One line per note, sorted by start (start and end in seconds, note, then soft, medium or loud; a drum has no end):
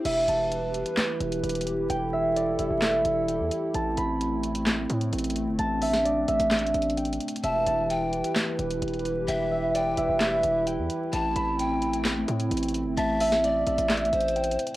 0.00 1.47 D4 medium
0.00 1.74 E4 medium
0.00 1.94 G4 medium
0.00 0.40 A4 loud
0.05 0.27 E1 loud
0.05 3.71 E3 medium
0.05 5.55 E4 medium
0.05 3.71 G4 medium
0.05 1.88 B4 medium
0.05 1.77 E5 loud
0.05 closed hi-hat medium
0.05 crash loud
0.28 0.84 E1 loud
0.28 1.86 A5 medium
0.28 closed hi-hat medium
0.52 closed hi-hat medium
0.74 closed hi-hat medium
0.86 closed hi-hat medium
0.97 snare loud
0.97 clap medium
0.97 closed hi-hat medium
1.20 1.43 E1 loud
1.20 closed hi-hat medium
1.32 closed hi-hat medium
1.44 1.88 E1 loud
1.44 closed hi-hat medium
1.49 closed hi-hat medium
1.55 closed hi-hat medium
1.61 closed hi-hat medium
1.67 closed hi-hat medium
1.90 2.56 E1 loud
1.90 3.73 A4 loud
1.90 3.28 G5 loud
1.90 closed hi-hat medium
2.13 2.59 E5 medium
2.36 4.21 D5 medium
2.36 closed hi-hat medium
2.59 2.70 E1 loud
2.59 2.82 E5 medium
2.59 closed hi-hat medium
2.71 3.04 E1 loud
2.82 4.54 E5 medium
2.82 snare loud
2.82 clap medium
2.82 closed hi-hat medium
3.05 3.41 E1 loud
3.05 closed hi-hat medium
3.28 4.84 G5 medium
3.28 closed hi-hat medium
3.40 3.51 E2 loud
3.51 closed hi-hat medium
3.74 3.96 A1 loud
3.74 7.40 A3 medium
3.74 7.40 C4 medium
3.74 5.19 A5 medium
3.74 closed hi-hat medium
3.97 4.86 A1 loud
3.97 5.55 B5 medium
3.97 closed hi-hat medium
4.21 closed hi-hat medium
4.44 closed hi-hat medium
4.55 closed hi-hat medium
4.66 snare loud
4.66 clap medium
4.66 closed hi-hat medium
4.90 5.12 A2 loud
4.90 closed hi-hat medium
5.01 closed hi-hat medium
5.13 5.49 A1 loud
5.13 closed hi-hat medium
5.19 closed hi-hat medium
5.24 closed hi-hat medium
5.30 closed hi-hat medium
5.36 closed hi-hat medium
5.47 5.58 G1 loud
5.59 6.25 A1 loud
5.59 7.42 D4 medium
5.59 7.04 A5 loud
5.59 closed hi-hat medium
5.82 6.28 E5 medium
5.82 open hi-hat medium
5.94 snare medium
6.05 7.90 D5 medium
6.05 closed hi-hat medium
6.28 6.39 A1 loud
6.28 6.51 E5 medium
6.28 closed hi-hat medium
6.40 6.73 A1 loud
6.40 closed hi-hat medium
6.51 7.43 E5 medium
6.51 snare loud
6.51 clap loud
6.51 closed hi-hat medium
6.59 closed hi-hat medium
6.67 closed hi-hat medium
6.74 7.19 A1 loud
6.74 closed hi-hat medium
6.82 closed hi-hat soft
6.90 closed hi-hat soft
6.97 8.53 G5 medium
6.97 closed hi-hat medium
7.05 closed hi-hat medium
7.13 closed hi-hat medium
7.20 closed hi-hat medium
7.28 closed hi-hat medium
7.36 closed hi-hat medium
7.44 7.66 E1 loud
7.44 11.09 E3 medium
7.44 14.77 E4 medium
7.44 11.09 G4 medium
7.44 11.09 B4 loud
7.44 9.16 E5 loud
7.44 7.87 A5 loud
7.44 closed hi-hat medium
7.66 8.22 E1 loud
7.66 9.24 A5 medium
7.66 closed hi-hat medium
7.90 8.33 G5 medium
7.90 closed hi-hat medium
8.13 closed hi-hat medium
8.24 closed hi-hat medium
8.36 snare loud
8.36 clap loud
8.36 closed hi-hat medium
8.59 8.81 E1 loud
8.59 closed hi-hat medium
8.71 closed hi-hat medium
8.82 9.26 E1 loud
8.82 closed hi-hat medium
8.88 closed hi-hat medium
8.94 closed hi-hat medium
8.99 closed hi-hat medium
9.05 closed hi-hat medium
9.28 9.95 E1 loud
9.28 9.71 E5 loud
9.28 10.66 G5 loud
9.28 closed hi-hat medium
9.51 9.97 E5 medium
9.74 11.59 D5 medium
9.74 10.18 G5 medium
9.74 closed hi-hat medium
9.97 10.08 E1 loud
9.97 10.20 E5 medium
9.97 closed hi-hat medium
10.09 10.42 E1 loud
10.20 11.93 E5 medium
10.20 10.64 E5 medium
10.20 snare loud
10.20 clap medium
10.20 closed hi-hat medium
10.43 10.80 E1 loud
10.43 closed hi-hat medium
10.67 12.22 G5 medium
10.67 closed hi-hat medium
10.78 10.89 E2 loud
10.90 closed hi-hat medium
11.13 11.35 A1 loud
11.13 14.77 A3 medium
11.13 14.77 C4 medium
11.13 11.56 A5 loud
11.13 12.58 A5 medium
11.13 closed hi-hat medium
11.36 12.25 A1 loud
11.36 12.93 B5 medium
11.36 closed hi-hat medium
11.59 12.02 G5 medium
11.59 closed hi-hat medium
11.82 closed hi-hat soft
11.94 closed hi-hat medium
12.05 snare loud
12.05 clap loud
12.05 closed hi-hat medium
12.28 12.50 A2 loud
12.28 closed hi-hat medium
12.40 closed hi-hat medium
12.51 12.87 A1 loud
12.51 closed hi-hat medium
12.57 closed hi-hat medium
12.63 closed hi-hat medium
12.68 closed hi-hat medium
12.74 closed hi-hat medium
12.86 12.97 G1 loud
12.97 13.64 A1 loud
12.97 13.41 E5 loud
12.97 14.42 A5 loud
12.97 closed hi-hat medium
13.20 13.66 E5 medium
13.20 open hi-hat medium
13.32 snare medium
13.44 14.09 D5 medium
13.44 14.77 D5 medium
13.44 closed hi-hat medium
13.67 13.78 A1 loud
13.67 13.89 E5 medium
13.67 closed hi-hat medium
13.78 14.11 A1 loud
13.78 closed hi-hat medium
13.90 14.77 E5 medium
13.90 snare loud
13.90 clap medium
13.90 closed hi-hat medium
13.97 closed hi-hat medium
14.05 closed hi-hat medium
14.13 14.57 A1 loud
14.13 14.77 C5 medium
14.13 closed hi-hat medium
14.21 closed hi-hat soft
14.28 closed hi-hat soft
14.36 14.77 G5 medium
14.36 closed hi-hat medium
14.44 closed hi-hat medium
14.51 closed hi-hat medium
14.59 closed hi-hat medium
14.67 closed hi-hat medium